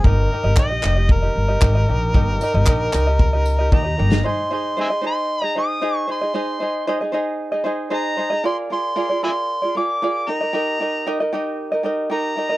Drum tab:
TB |----------------|--x---x---x-----|----------------|----------------|
CP |----x-x-----x---|----x-x---------|----------------|----------------|
SD |----------------|---------------o|----------------|----------------|
BD |o---o---o---o---|o---o---o---o---|----------------|----------------|

TB |----------------|----------------|
CP |----------------|----------------|
SD |----------------|----------------|
BD |----------------|----------------|